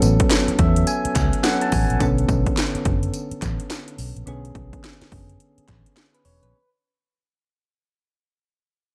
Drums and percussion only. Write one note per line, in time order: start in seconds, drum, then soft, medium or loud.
0.02 closed hi-hat medium
0.02 tambourine medium
0.20 kick medium
0.20 closed hi-hat medium
0.30 snare loud
0.30 clap medium
0.30 closed hi-hat medium
0.30 tambourine loud
0.48 closed hi-hat soft
0.59 kick medium
0.59 closed hi-hat medium
0.76 closed hi-hat medium
0.87 closed hi-hat medium
0.87 tambourine medium
1.05 closed hi-hat soft
1.15 kick medium
1.15 clap medium
1.15 closed hi-hat medium
1.15 tambourine medium
1.33 closed hi-hat medium
1.44 snare loud
1.44 clap medium
1.44 closed hi-hat medium
1.44 tambourine medium
1.61 closed hi-hat medium
1.72 kick loud
1.72 open hi-hat medium
1.72 tambourine medium
1.90 closed hi-hat medium
2.00 kick loud
2.00 closed hi-hat medium
2.00 tambourine medium
2.18 closed hi-hat medium
2.29 kick loud
2.29 closed hi-hat medium
2.29 tambourine medium
2.46 kick medium
2.46 closed hi-hat medium
2.57 snare loud
2.57 clap medium
2.57 closed hi-hat medium
2.57 tambourine medium
2.75 closed hi-hat soft
2.85 kick loud
2.85 closed hi-hat medium
3.03 closed hi-hat medium
3.14 closed hi-hat medium
3.14 tambourine medium
3.31 closed hi-hat soft
3.42 kick medium
3.42 clap medium
3.42 closed hi-hat medium
3.42 tambourine medium
3.60 closed hi-hat medium
3.70 snare loud
3.70 clap medium
3.70 closed hi-hat medium
3.70 tambourine medium
3.88 closed hi-hat medium
3.98 open hi-hat medium
3.98 tambourine medium
4.17 closed hi-hat medium
4.27 closed hi-hat medium
4.45 closed hi-hat medium
4.55 kick loud
4.55 closed hi-hat medium
4.73 kick medium
4.73 closed hi-hat soft
4.83 snare loud
4.83 clap medium
4.83 closed hi-hat medium
5.01 snare medium
5.01 closed hi-hat soft
5.12 kick loud
5.12 open hi-hat medium
5.29 closed hi-hat medium
5.40 closed hi-hat medium
5.58 closed hi-hat soft
5.68 kick medium
5.68 clap medium
5.68 closed hi-hat medium
5.86 closed hi-hat medium
5.97 snare loud
5.97 clap medium
5.97 closed hi-hat medium
6.15 closed hi-hat medium
6.25 open hi-hat medium
6.43 closed hi-hat medium